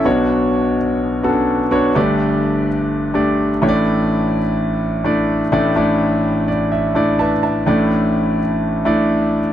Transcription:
<<
  \new Staff \with { instrumentName = "Grand piano" } { \time 4/4 \key a \mixolydian \tempo 4 = 126 << { r1 | r1 | r1 | r4. d''8 e''4 <b' e'' a''>8 <e'' a''>8~ |
<e'' a''>8 r2. r8 | } \\ { <b d' fis' cis''>4. r4 <b cis' d' fis' a'>8. r16 <b d' fis' cis''>8 | <a d' g' d''>4. r4 <a d' g' d''>8. r16 <a d' e' cis'' d''>8~ | <a d' e' cis'' d''>4 r4. <a d' e' d''>8. r16 <a d' e' d''>8 | <a d' e' d''>4. r4 <a d' e' d''>8. r8. |
<a d' e' d''>4. r4 <a d' e' d''>4 r8 | } >> }
  \new Staff \with { instrumentName = "Grand piano" } { \clef bass \time 4/4 \key a \mixolydian <b,, b,>1 | <g,, g,>2.~ <g,, g,>8 <a,, a,>8~ | <a,, a,>2.~ <a,, a,>8 <a,, a,>8~ | <a,, a,>2.~ <a,, a,>8 r8 |
<a,, a,>1 | }
>>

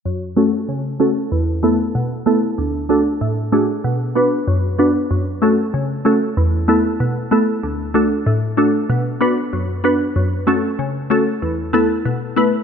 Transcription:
\new Staff \with { instrumentName = "Synth pluck" } { \time 4/4 \key fis \minor \tempo 4 = 95 << { r8 <a cis' fis' a'>8 r8 <a cis' fis' a'>8 r8 <a b e' a'>8 r8 <a b e' a'>8 | r8 <a d' fis' a'>8 r8 <a d' fis' gis'>8 r8 <b d' fis' b'>8 r8 <b d' fis' b'>8 | r8 <a cis' fis' a'>8 r8 <a cis' fis' a'>8 r8 <a b e' a'>8 r8 <a b e' a'>8 | r8 <a d' fis' a'>8 r8 <a d' fis' a'>8 r8 <b d' fis' b'>8 r8 <b d' fis' b'>8 |
r8 <a cis' fis' a'>8 r8 <a cis' fis' a'>8 r8 <a b e' a'>8 r8 <a b e' b'>8 | } \\ { fis,4 cis4 e,4 b,4 | d,4 a,4 b,4 fis,4 | fis,4 cis4 e,4 b,4 | d,4 a,4 b,4 fis,4 |
fis,4 cis4 e,4 b,4 | } >> }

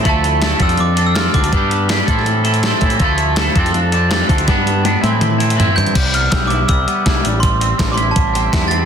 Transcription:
<<
  \new Staff \with { instrumentName = "Glockenspiel" } { \time 4/4 \key a \minor \tempo 4 = 163 a''4. e'''8 d'''8. e'''16 f'''8 d'''8~ | d'''4. r2 r8 | r1 | r2. r8 g'''8~ |
g'''8 f'''8 e'''8 d'''8 e'''2 | c'''4~ c'''16. d'''32 c'''8 a''4. a'''8 | }
  \new Staff \with { instrumentName = "Clean electric guitar" } { \time 4/4 \key a \minor <f a e' a'>4 <f a e' a'>8 <f c' d' a'>4 <c' d' a'>8 <f c' d' a'>8 <c' d' a'>8 | <g b d' g'>4 <g b d' g'>8 <e c' e' a'>4 <c' e' a'>8 <e c' e' a'>8 <c' e' a'>8 | <f a e' a'>4 <f a e' a'>8 <f c' d' a'>4 <c' d' a'>8 <f c' d' a'>8 <c' d' a'>8 | <g b d'>4 <g b d'>8 <e c' e'>4 <c' e'>8 <e c' e'>8 <c' e'>8 |
g8 b8 g8 e'8 g8 b8 e'8 g8 | g8 c'8 g8 e'8 g8 c'8 e'8 c'8 | }
  \new Staff \with { instrumentName = "Picked electric bass" } { \clef bass \time 4/4 \key a \minor d,4. f,8 f,4. d,8 | g,4. a,2 a,8 | d,4. f,8 f,4. d,8 | g,4. a,2 g,8 |
c,4 b,,4 c,8 r8 c,8 a,,8~ | a,,4 a,,4 a,,4 e,4 | }
  \new DrumStaff \with { instrumentName = "Drums" } \drummode { \time 4/4 <hh bd>8 hh8 <hh sn>8 <hh bd>16 hh16 hh8 hh8 <hh sn>8 <hh bd>16 hh16 | <hh bd>8 hh8 <hh sn>8 <hh bd>16 sn16 hh8 hh16 hh16 <hh sn>8 <hh bd>16 hh16 | <hh bd>8 hh8 <hh sn>8 <hh bd>16 <hh sn>16 hh8 hh8 <hh sn>8 <hh bd>16 hh16 | <hh bd sn>8 hh8 <hh tommh>8 <hh tommh>8 <hh toml>8 hh16 hh16 <hh tomfh>8 <hh tomfh>16 hh16 |
<cymc hh bd>8 hh8 <hh bd sn>8 hh8 <hh bd>8 hh8 <hh bd sn>8 hh8 | <hh bd>8 hh8 <hh bd sn>8 hh8 <hh bd>8 hh8 <hh bd sn>8 hh8 | }
>>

